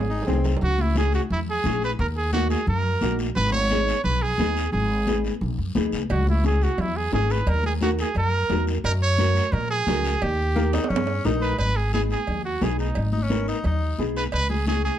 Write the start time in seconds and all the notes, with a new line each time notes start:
Already playing: G#1 G#4
0.10 D#4
0.22 low timbale
0.26 C2 C4 D#4 G#4, high conga, low conga, short guiro
0.33 low timbale
0.44 low timbale, short guiro
0.57 low timbale
0.61 C#2 F#4, low conga, long guiro
0.79 E4, high conga
0.95 C#4 E4 G#4, high conga, short guiro
1.13 F#4, short guiro
1.30 E2 E4, low conga, long guiro
1.50 G#4
1.64 A#1 C#4 E4 G#4, high conga, low conga, short guiro
1.83 B4, short guiro
1.99 D#2 A#4, long guiro
2.17 G#4
2.33 A#3 D#4 F#4, high conga, short guiro
2.50 G#4, short guiro
2.67 F#2 A#4, low conga, long guiro
3.01 A#1 A#3 D#4 F#4, high conga, low conga, short guiro
3.19 short guiro
3.35 G#1 B4, low conga, long guiro
3.52 C#5, high conga
3.70 B3 D#4 G#4, high conga, short guiro
3.88 short guiro
4.04 B1 B4, low conga, long guiro
4.22 G#4
4.38 D#2 B3 D#4 G#4, high conga, low conga, short guiro
4.57 short guiro
4.72 G#1 G#4, low conga, long guiro
5.07 B3 D#4 G#4, high conga, short guiro
5.24 short guiro
5.41 B1, low conga, long guiro
5.58 F#2
5.75 D#2 B3 D#4 G#4, high conga, low conga, short guiro
5.92 C#2, short guiro
6.10 C#2 F#4, cowbell, low conga, long guiro
6.27 E4, high conga
6.44 C#4 E4 G#4, high conga, short guiro
6.61 F#4, short guiro
6.78 E2 E4, cowbell, low conga, long guiro
6.96 G#4
7.12 G#1 C#4 E4 G#4, high conga, low timbale, short guiro
7.30 B4, short guiro
7.47 D#2 A#4, cowbell, low conga, long guiro
7.63 G#4, high conga
7.81 D#4 F#4 A#4, high conga, short guiro
7.99 G#4, short guiro
8.15 F#2 A#4, cowbell, low conga, long guiro
8.50 E2 D#4 F#4 A#4, high conga, low conga, low timbale, short guiro
8.67 short guiro
8.84 F#2 A#4, cowbell, long guiro
9.02 C#5
9.18 C#4 F#4 A#4, high conga, short guiro
9.36 short guiro
9.52 A#2 A#4, cowbell, low conga, long guiro
9.70 G#4
9.87 C#2 C#4 F#4 A#4, high conga, low conga, low timbale, short guiro
10.05 short guiro
10.22 D#2 G4, cowbell, long guiro
10.56 A#3 D#4 G4 A#4, high conga, short guiro
10.73 D#4, high timbale, short guiro
10.84 high timbale
10.89 G2 C#4, cowbell, low conga, long guiro
10.96 high timbale
11.07 high timbale
11.25 A#1 D#4 G4 A#4, high conga, short guiro
11.41 B4, short guiro
11.53 low timbale
11.59 G#1 B4, cowbell, low conga, long guiro
11.76 G#4
11.93 B3 D#4 G#4, high conga, short guiro
12.10 G#4, short guiro
12.27 D#2, cowbell, low conga, long guiro
12.45 F#4
12.61 B1 B3 D#4 G#4, high conga, low conga, low timbale, short guiro
12.79 D#4, short guiro
12.95 G#1, cowbell, low conga, long guiro
13.12 D#4, high conga
13.22 C#4
13.30 B3 D#4 A#4, high conga, short guiro
13.48 D#4, short guiro
13.64 D#2 D#4, cowbell, low conga, long guiro
13.98 B1 B3 D#4 G#4, high conga, short guiro
14.16 B4, short guiro
14.32 C#2 B4, cowbell, long guiro
14.50 G#4, high conga
14.67 C#4 E4 G#4, high conga, short guiro
14.85 G#4, short guiro